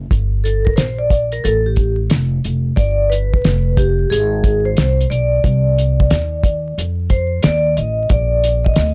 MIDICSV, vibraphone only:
0, 0, Header, 1, 2, 480
1, 0, Start_track
1, 0, Key_signature, -2, "minor"
1, 0, Tempo, 666667
1, 76, Time_signature, 4, 2, 24, 8
1, 6439, End_track
2, 0, Start_track
2, 0, Title_t, "Vibraphone"
2, 0, Program_c, 0, 11
2, 316, Note_on_c, 0, 69, 78
2, 467, Note_on_c, 0, 70, 77
2, 477, Note_off_c, 0, 69, 0
2, 547, Note_off_c, 0, 70, 0
2, 548, Note_on_c, 0, 72, 90
2, 697, Note_off_c, 0, 72, 0
2, 710, Note_on_c, 0, 74, 92
2, 934, Note_off_c, 0, 74, 0
2, 954, Note_on_c, 0, 70, 89
2, 991, Note_off_c, 0, 70, 0
2, 1036, Note_on_c, 0, 69, 92
2, 1196, Note_on_c, 0, 67, 69
2, 1197, Note_off_c, 0, 69, 0
2, 1418, Note_off_c, 0, 67, 0
2, 1989, Note_on_c, 0, 74, 99
2, 2230, Note_on_c, 0, 71, 95
2, 2239, Note_off_c, 0, 74, 0
2, 2715, Note_on_c, 0, 67, 83
2, 2727, Note_off_c, 0, 71, 0
2, 2938, Note_off_c, 0, 67, 0
2, 2953, Note_on_c, 0, 68, 89
2, 3350, Note_on_c, 0, 72, 95
2, 3363, Note_off_c, 0, 68, 0
2, 3652, Note_off_c, 0, 72, 0
2, 3673, Note_on_c, 0, 74, 87
2, 4845, Note_off_c, 0, 74, 0
2, 5111, Note_on_c, 0, 72, 80
2, 5351, Note_on_c, 0, 74, 93
2, 5361, Note_off_c, 0, 72, 0
2, 5576, Note_off_c, 0, 74, 0
2, 5594, Note_on_c, 0, 75, 95
2, 5818, Note_off_c, 0, 75, 0
2, 5831, Note_on_c, 0, 74, 93
2, 6225, Note_on_c, 0, 75, 100
2, 6242, Note_off_c, 0, 74, 0
2, 6439, Note_off_c, 0, 75, 0
2, 6439, End_track
0, 0, End_of_file